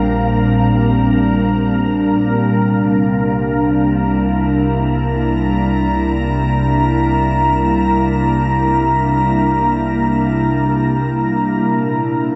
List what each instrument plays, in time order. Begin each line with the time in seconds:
Already playing: sub bass A#1, ambient pad A#2 G3 C4 D4 A#4, synth texture A#3 A#5, synth drone A#3 A#4
2.42 sub bass C2, ambient pad C3
2.85 ambient pad A#3
3.58 ambient pad E4
4.70 ambient pad A#5
11.68 ambient pad A#2